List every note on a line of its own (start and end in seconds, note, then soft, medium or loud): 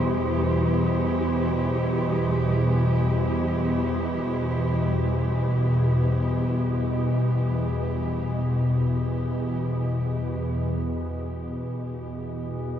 0.00 10.88 E2 medium
0.00 10.91 E2 medium
0.00 10.90 B2 medium
0.00 12.79 G3 medium
0.00 12.79 E4 medium
0.00 12.79 G4 medium
0.00 10.91 C5 medium
10.86 12.79 B2 medium
10.91 12.79 E2 medium
10.91 12.79 B2 medium